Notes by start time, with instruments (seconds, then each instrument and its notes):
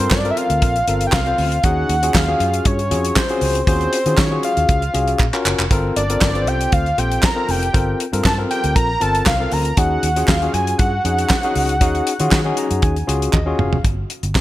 Already playing: analog synth lead C5
0.00 tine electric piano C4 F4 A4 A#4
0.11 analog synth lead D5, kick, snare, clap
0.25 tine electric piano C4 F4 A4 A#4, closed hi-hat
0.30 analog synth lead E5
0.37 analog synth lead F5, closed hi-hat
0.50 fingered electric bass D2, closed hi-hat
0.62 fingered electric bass A#1, kick, closed hi-hat
0.76 closed hi-hat
0.87 fingered electric bass G1, tine electric piano C4 F4 A4 A#4, closed hi-hat
1.01 closed hi-hat
1.07 analog synth lead G5
1.12 fingered electric bass C2, analog synth lead F5, kick, snare, clap
1.26 tine electric piano C4 F4 A4 C5, closed hi-hat
1.38 fingered electric bass D2, open hi-hat
1.52 closed hi-hat
1.63 fingered electric bass D#2, tine electric piano C#4 D#4 F#4 G#4, analog synth lead F#5, kick, closed hi-hat
1.89 fingered electric bass D#2, closed hi-hat
2.02 tine electric piano C#4 F4 F#4 G#4, closed hi-hat
2.14 fingered electric bass D#2, analog synth lead F5, kick, snare, clap
2.28 tine electric piano C#4 F4 F#4 G#4
2.40 fingered electric bass F#2, closed hi-hat
2.54 closed hi-hat
2.65 fingered electric bass G2, analog synth lead C#5, kick, closed hi-hat
2.79 closed hi-hat
2.91 fingered electric bass F2, tine electric piano C#4 F4 F#4 G#4, closed hi-hat
3.05 closed hi-hat
3.16 analog synth lead C5, kick, snare, clap
3.29 tine electric piano C#4 F4 F#4 G#4, closed hi-hat
3.41 fingered electric bass C#2, open hi-hat
3.55 closed hi-hat
3.67 fingered electric bass D#2, tine electric piano C#4 F4 F#4 G#4, analog synth lead C5, kick, closed hi-hat
3.81 closed hi-hat
3.93 closed hi-hat
4.06 fingered electric bass D#3, tine electric piano C#4 F4 F#4 G#4, closed hi-hat
4.17 fingered electric bass D#3, analog synth lead C#5, kick, snare, clap
4.31 tine electric piano C#4 F4 F#4 G#4
4.43 analog synth lead F5, closed hi-hat
4.57 fingered electric bass D#2, closed hi-hat
4.69 fingered electric bass C#2, kick, closed hi-hat
4.82 closed hi-hat
4.94 fingered electric bass C2, tine electric piano C#4 F4 F#4 G#4, closed hi-hat
5.08 closed hi-hat
5.19 fingered electric bass A#1, kick, clap
5.33 tine electric piano C#4 F4 F#4 A#4, clap
5.45 fingered electric bass F#1, clap
5.59 fingered electric bass F1, clap
5.71 fingered electric bass G1, tine electric piano C4 F4 A4 A#4, kick, closed hi-hat
5.96 fingered electric bass G1, analog synth lead D5, closed hi-hat
6.10 tine electric piano C4 F4 A4 A#4, closed hi-hat
6.21 fingered electric bass G1, analog synth lead D5, kick, snare, clap
6.35 tine electric piano C4 F4 A4 B4, closed hi-hat
6.42 tine electric piano C5
6.47 fingered electric bass C2, analog synth lead G5, closed hi-hat
6.61 closed hi-hat
6.72 fingered electric bass D2, analog synth lead F5, kick, closed hi-hat
6.86 closed hi-hat
6.98 fingered electric bass A#1, tine electric piano C4 F4 A4 C5, analog synth lead G5, closed hi-hat
7.12 closed hi-hat
7.23 analog synth lead A#5, kick, snare, clap
7.36 tine electric piano C4 F4 A4 A#4
7.49 fingered electric bass F1, analog synth lead G5, open hi-hat
7.63 closed hi-hat
7.73 fingered electric bass G1, tine electric piano C4 F4 A4 A#4, kick, closed hi-hat
8.00 closed hi-hat
8.13 fingered electric bass G2, tine electric piano C4 F4 A4 A#4, closed hi-hat
8.25 fingered electric bass G2, analog synth lead A5, kick, snare, clap
8.38 tine electric piano C4 F4 A4 A#4
8.51 analog synth lead G5, closed hi-hat
8.64 fingered electric bass D2, closed hi-hat
8.76 fingered electric bass A#1, analog synth lead A#5, kick, closed hi-hat
9.01 fingered electric bass G1, tine electric piano C4 F4 A4 A#4, analog synth lead A5, closed hi-hat
9.15 closed hi-hat
9.26 fingered electric bass C2, analog synth lead F5, kick, snare, clap
9.40 tine electric piano C4 F4 A4 A#4
9.51 fingered electric bass D2, analog synth lead A#5, open hi-hat
9.65 closed hi-hat
9.77 fingered electric bass D#2, tine electric piano C#4 D#4 F#4 G#4, analog synth lead F#5, kick, closed hi-hat
10.03 fingered electric bass D#2, closed hi-hat
10.16 tine electric piano C#4 F4 F#4 G#4, closed hi-hat
10.28 fingered electric bass D#2, analog synth lead F5, kick, snare, clap
10.42 tine electric piano C#4 F4 F#4 G#4, closed hi-hat
10.53 fingered electric bass F#2, analog synth lead G#5, closed hi-hat
10.67 closed hi-hat
10.78 fingered electric bass G2, analog synth lead F#5, kick, closed hi-hat
11.05 fingered electric bass F2, tine electric piano C#4 D#4 F#4 G#4, closed hi-hat
11.18 closed hi-hat
11.29 kick, snare, clap
11.43 tine electric piano C#4 D#4 F#4 G#4, closed hi-hat
11.55 fingered electric bass C#2, open hi-hat
11.69 closed hi-hat
11.81 fingered electric bass D#2, tine electric piano C#4 D#4 F#4 G#4, kick, closed hi-hat
11.95 closed hi-hat
12.07 closed hi-hat
12.20 fingered electric bass D#3, tine electric piano C#4 F4 F#4 G#4, closed hi-hat
12.31 fingered electric bass D#3, kick, snare, clap
12.45 tine electric piano C#4 D#4 F#4 G#4
12.57 tine electric piano A#5, closed hi-hat
12.71 fingered electric bass F#2, closed hi-hat
12.82 fingered electric bass D#2, tine electric piano G#5, kick, closed hi-hat
12.96 closed hi-hat
13.07 fingered electric bass C#2, tine electric piano C#4 F4 F#4 G#4, closed hi-hat
13.22 closed hi-hat
13.33 fingered electric bass D#2, tine electric piano D#5, kick, clap, high tom
13.46 tine electric piano C#4 F4 F#4 G#4
13.59 fingered electric bass F1, tine electric piano F5, mid tom
13.73 floor tom
13.84 fingered electric bass G1, kick, closed hi-hat
14.10 closed hi-hat
14.23 fingered electric bass G1, closed hi-hat
14.35 kick, snare, clap